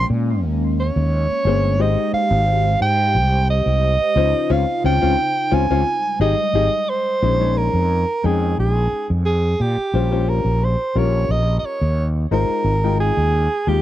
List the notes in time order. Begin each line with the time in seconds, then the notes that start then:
Already playing: G#3 A#3 C#4
0.10 A#2
0.44 D#2
0.80 C#5
0.96 D#2
1.45 G1 A#3 C#4 G#4 C5
1.79 G#1 G#3 D#4 G4 C5 D#5
2.13 F5, muted fretless electric bass stroke
2.31 G#1
2.81 G#2 G5
3.15 C2
3.50 D#5
3.66 C2
4.16 C#2 C#3 F3 C#4 D#4 F4 C5
4.50 C#2 C4 C#4 F4 F5
4.84 C#2 C4 C#4 F4 G5
5.01 C#2 C4 C#4 F4
5.51 C#2 C4 C#4 F4 G#5
5.70 C#2 C4 C#4 F4
5.89 G3 G#3
6.20 G#1 D#4 G4 G#4 D#5
6.53 G#1 D#4 G4 G#4
6.89 C5
7.22 A#1 G#3 C#4 D#4 C5
7.40 G#3 C#4 D#4 C#5
7.57 A#4
7.74 F2
8.23 F2 G#3 C#4 D#4 G#4 G5
8.58 A#1 G#4
8.93 muted fretless electric bass stroke
9.10 F2
9.26 G#4
9.60 A#2 G4
9.78 muted fretless electric bass stroke
9.94 A#1 G3 C#4 F4 C5
10.11 G3 C#4 F4 C5
10.29 A#4
10.45 A#1
10.64 C5
10.95 A#1 G3 C#4 F4 A#4 C#5
11.29 A#1 D#5
11.59 D#5
11.65 C#5
11.81 D#2
12.31 G#1 G#3 D#4 F4 A#4 C5
12.49 muted fretless electric bass stroke
12.64 G#1
12.84 G#3 D#4 F4 G5
13.00 G#4
13.17 D#2
13.67 D#2 G#3 D#4 F4 G4